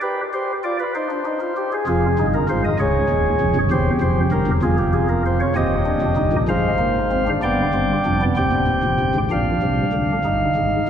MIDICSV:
0, 0, Header, 1, 2, 480
1, 0, Start_track
1, 0, Tempo, 616650
1, 14, Time_signature, 6, 3, 24, 8
1, 5293, Tempo, 627615
1, 8428, End_track
2, 0, Start_track
2, 0, Title_t, "Pipe organ"
2, 0, Program_c, 0, 19
2, 12, Note_on_c, 0, 67, 75
2, 12, Note_on_c, 0, 71, 86
2, 162, Note_off_c, 0, 67, 0
2, 162, Note_off_c, 0, 71, 0
2, 257, Note_on_c, 0, 67, 66
2, 259, Note_on_c, 0, 72, 80
2, 405, Note_off_c, 0, 67, 0
2, 407, Note_off_c, 0, 72, 0
2, 496, Note_on_c, 0, 65, 59
2, 498, Note_on_c, 0, 74, 79
2, 599, Note_off_c, 0, 74, 0
2, 619, Note_on_c, 0, 71, 73
2, 644, Note_off_c, 0, 65, 0
2, 720, Note_off_c, 0, 71, 0
2, 739, Note_on_c, 0, 72, 82
2, 742, Note_on_c, 0, 63, 67
2, 841, Note_off_c, 0, 63, 0
2, 861, Note_on_c, 0, 62, 66
2, 960, Note_off_c, 0, 62, 0
2, 975, Note_on_c, 0, 63, 65
2, 1076, Note_off_c, 0, 63, 0
2, 1092, Note_on_c, 0, 65, 63
2, 1194, Note_off_c, 0, 65, 0
2, 1218, Note_on_c, 0, 67, 67
2, 1318, Note_off_c, 0, 67, 0
2, 1341, Note_on_c, 0, 68, 68
2, 1352, Note_off_c, 0, 72, 0
2, 1439, Note_off_c, 0, 68, 0
2, 1457, Note_on_c, 0, 29, 89
2, 1457, Note_on_c, 0, 65, 73
2, 1458, Note_on_c, 0, 68, 73
2, 1460, Note_on_c, 0, 41, 85
2, 1603, Note_off_c, 0, 29, 0
2, 1603, Note_off_c, 0, 65, 0
2, 1605, Note_off_c, 0, 41, 0
2, 1702, Note_on_c, 0, 43, 84
2, 1705, Note_on_c, 0, 31, 75
2, 1705, Note_on_c, 0, 63, 69
2, 1763, Note_off_c, 0, 68, 0
2, 1820, Note_on_c, 0, 70, 72
2, 1846, Note_off_c, 0, 43, 0
2, 1848, Note_off_c, 0, 63, 0
2, 1849, Note_off_c, 0, 31, 0
2, 1918, Note_off_c, 0, 70, 0
2, 1939, Note_on_c, 0, 44, 77
2, 1940, Note_on_c, 0, 32, 82
2, 1940, Note_on_c, 0, 65, 68
2, 1941, Note_on_c, 0, 72, 68
2, 2038, Note_off_c, 0, 72, 0
2, 2058, Note_on_c, 0, 75, 66
2, 2084, Note_off_c, 0, 32, 0
2, 2084, Note_off_c, 0, 44, 0
2, 2085, Note_off_c, 0, 65, 0
2, 2156, Note_off_c, 0, 75, 0
2, 2176, Note_on_c, 0, 68, 73
2, 2176, Note_on_c, 0, 73, 73
2, 2178, Note_on_c, 0, 25, 74
2, 2178, Note_on_c, 0, 37, 83
2, 2323, Note_off_c, 0, 25, 0
2, 2323, Note_off_c, 0, 37, 0
2, 2409, Note_on_c, 0, 27, 76
2, 2411, Note_on_c, 0, 39, 75
2, 2556, Note_off_c, 0, 27, 0
2, 2558, Note_off_c, 0, 39, 0
2, 2652, Note_on_c, 0, 41, 76
2, 2654, Note_on_c, 0, 29, 84
2, 2752, Note_off_c, 0, 41, 0
2, 2753, Note_off_c, 0, 29, 0
2, 2767, Note_on_c, 0, 43, 91
2, 2769, Note_on_c, 0, 31, 81
2, 2789, Note_off_c, 0, 68, 0
2, 2789, Note_off_c, 0, 73, 0
2, 2869, Note_off_c, 0, 43, 0
2, 2870, Note_off_c, 0, 31, 0
2, 2887, Note_on_c, 0, 40, 83
2, 2889, Note_on_c, 0, 67, 70
2, 2890, Note_on_c, 0, 28, 89
2, 2890, Note_on_c, 0, 72, 70
2, 3035, Note_off_c, 0, 40, 0
2, 3036, Note_off_c, 0, 72, 0
2, 3037, Note_off_c, 0, 28, 0
2, 3121, Note_on_c, 0, 41, 79
2, 3122, Note_on_c, 0, 72, 69
2, 3124, Note_on_c, 0, 29, 79
2, 3270, Note_off_c, 0, 41, 0
2, 3271, Note_off_c, 0, 72, 0
2, 3272, Note_off_c, 0, 29, 0
2, 3360, Note_on_c, 0, 43, 81
2, 3360, Note_on_c, 0, 70, 63
2, 3363, Note_on_c, 0, 31, 78
2, 3464, Note_off_c, 0, 43, 0
2, 3466, Note_off_c, 0, 31, 0
2, 3481, Note_on_c, 0, 40, 74
2, 3482, Note_on_c, 0, 28, 76
2, 3505, Note_off_c, 0, 67, 0
2, 3510, Note_off_c, 0, 70, 0
2, 3586, Note_off_c, 0, 28, 0
2, 3586, Note_off_c, 0, 40, 0
2, 3599, Note_on_c, 0, 41, 82
2, 3601, Note_on_c, 0, 29, 86
2, 3602, Note_on_c, 0, 65, 72
2, 3602, Note_on_c, 0, 68, 65
2, 3707, Note_off_c, 0, 68, 0
2, 3721, Note_on_c, 0, 67, 65
2, 3827, Note_off_c, 0, 67, 0
2, 3839, Note_on_c, 0, 68, 61
2, 3946, Note_off_c, 0, 68, 0
2, 3961, Note_on_c, 0, 70, 66
2, 4067, Note_off_c, 0, 70, 0
2, 4093, Note_on_c, 0, 72, 69
2, 4195, Note_off_c, 0, 72, 0
2, 4207, Note_on_c, 0, 73, 66
2, 4225, Note_off_c, 0, 41, 0
2, 4226, Note_off_c, 0, 29, 0
2, 4227, Note_off_c, 0, 65, 0
2, 4311, Note_off_c, 0, 73, 0
2, 4325, Note_on_c, 0, 60, 91
2, 4326, Note_on_c, 0, 39, 69
2, 4328, Note_on_c, 0, 27, 75
2, 4328, Note_on_c, 0, 75, 71
2, 4331, Note_on_c, 0, 67, 77
2, 4475, Note_off_c, 0, 60, 0
2, 4560, Note_on_c, 0, 62, 78
2, 4638, Note_off_c, 0, 39, 0
2, 4639, Note_off_c, 0, 27, 0
2, 4684, Note_on_c, 0, 29, 67
2, 4687, Note_on_c, 0, 41, 66
2, 4713, Note_off_c, 0, 62, 0
2, 4791, Note_off_c, 0, 29, 0
2, 4792, Note_off_c, 0, 41, 0
2, 4798, Note_on_c, 0, 63, 72
2, 4799, Note_on_c, 0, 31, 66
2, 4799, Note_on_c, 0, 43, 70
2, 4908, Note_off_c, 0, 31, 0
2, 4908, Note_off_c, 0, 43, 0
2, 4924, Note_on_c, 0, 46, 62
2, 4925, Note_on_c, 0, 34, 62
2, 4951, Note_off_c, 0, 63, 0
2, 4951, Note_off_c, 0, 75, 0
2, 4953, Note_off_c, 0, 67, 0
2, 5031, Note_off_c, 0, 46, 0
2, 5032, Note_off_c, 0, 34, 0
2, 5045, Note_on_c, 0, 56, 81
2, 5046, Note_on_c, 0, 44, 66
2, 5047, Note_on_c, 0, 32, 68
2, 5048, Note_on_c, 0, 77, 68
2, 5049, Note_on_c, 0, 72, 67
2, 5197, Note_off_c, 0, 56, 0
2, 5282, Note_on_c, 0, 58, 73
2, 5434, Note_off_c, 0, 58, 0
2, 5531, Note_on_c, 0, 60, 76
2, 5635, Note_off_c, 0, 60, 0
2, 5653, Note_on_c, 0, 62, 81
2, 5667, Note_off_c, 0, 44, 0
2, 5668, Note_off_c, 0, 32, 0
2, 5669, Note_off_c, 0, 72, 0
2, 5669, Note_off_c, 0, 77, 0
2, 5755, Note_off_c, 0, 62, 0
2, 5772, Note_on_c, 0, 74, 69
2, 5775, Note_on_c, 0, 43, 68
2, 5775, Note_on_c, 0, 59, 77
2, 5777, Note_on_c, 0, 31, 74
2, 5778, Note_on_c, 0, 79, 72
2, 5921, Note_off_c, 0, 43, 0
2, 5921, Note_off_c, 0, 59, 0
2, 5922, Note_off_c, 0, 31, 0
2, 6010, Note_on_c, 0, 31, 58
2, 6011, Note_on_c, 0, 60, 69
2, 6012, Note_on_c, 0, 43, 57
2, 6157, Note_off_c, 0, 31, 0
2, 6157, Note_off_c, 0, 60, 0
2, 6158, Note_off_c, 0, 43, 0
2, 6254, Note_on_c, 0, 62, 72
2, 6255, Note_on_c, 0, 41, 63
2, 6257, Note_on_c, 0, 29, 62
2, 6353, Note_off_c, 0, 62, 0
2, 6373, Note_on_c, 0, 59, 71
2, 6385, Note_off_c, 0, 74, 0
2, 6388, Note_off_c, 0, 79, 0
2, 6400, Note_off_c, 0, 41, 0
2, 6402, Note_off_c, 0, 29, 0
2, 6472, Note_off_c, 0, 59, 0
2, 6492, Note_on_c, 0, 39, 64
2, 6492, Note_on_c, 0, 60, 78
2, 6493, Note_on_c, 0, 27, 59
2, 6493, Note_on_c, 0, 79, 67
2, 6494, Note_on_c, 0, 67, 63
2, 6592, Note_off_c, 0, 27, 0
2, 6592, Note_off_c, 0, 39, 0
2, 6612, Note_on_c, 0, 38, 61
2, 6613, Note_on_c, 0, 26, 61
2, 6712, Note_off_c, 0, 38, 0
2, 6713, Note_off_c, 0, 26, 0
2, 6726, Note_on_c, 0, 27, 59
2, 6728, Note_on_c, 0, 39, 63
2, 6829, Note_off_c, 0, 27, 0
2, 6830, Note_off_c, 0, 39, 0
2, 6850, Note_on_c, 0, 29, 58
2, 6853, Note_on_c, 0, 41, 55
2, 6952, Note_off_c, 0, 29, 0
2, 6954, Note_off_c, 0, 41, 0
2, 6974, Note_on_c, 0, 31, 58
2, 6975, Note_on_c, 0, 43, 62
2, 7075, Note_off_c, 0, 31, 0
2, 7075, Note_off_c, 0, 43, 0
2, 7092, Note_on_c, 0, 32, 60
2, 7093, Note_on_c, 0, 44, 58
2, 7111, Note_off_c, 0, 60, 0
2, 7112, Note_off_c, 0, 67, 0
2, 7112, Note_off_c, 0, 79, 0
2, 7194, Note_off_c, 0, 32, 0
2, 7195, Note_off_c, 0, 44, 0
2, 7213, Note_on_c, 0, 62, 68
2, 7214, Note_on_c, 0, 34, 74
2, 7214, Note_on_c, 0, 46, 67
2, 7214, Note_on_c, 0, 77, 60
2, 7362, Note_off_c, 0, 34, 0
2, 7362, Note_off_c, 0, 46, 0
2, 7454, Note_on_c, 0, 36, 58
2, 7455, Note_on_c, 0, 48, 62
2, 7603, Note_off_c, 0, 36, 0
2, 7603, Note_off_c, 0, 48, 0
2, 7687, Note_on_c, 0, 38, 61
2, 7688, Note_on_c, 0, 50, 64
2, 7834, Note_off_c, 0, 62, 0
2, 7839, Note_off_c, 0, 38, 0
2, 7839, Note_off_c, 0, 50, 0
2, 7927, Note_on_c, 0, 31, 69
2, 7931, Note_on_c, 0, 43, 63
2, 7932, Note_on_c, 0, 63, 61
2, 8079, Note_off_c, 0, 31, 0
2, 8081, Note_off_c, 0, 43, 0
2, 8166, Note_on_c, 0, 32, 62
2, 8172, Note_on_c, 0, 44, 65
2, 8318, Note_off_c, 0, 32, 0
2, 8322, Note_off_c, 0, 44, 0
2, 8428, Note_off_c, 0, 63, 0
2, 8428, Note_off_c, 0, 77, 0
2, 8428, End_track
0, 0, End_of_file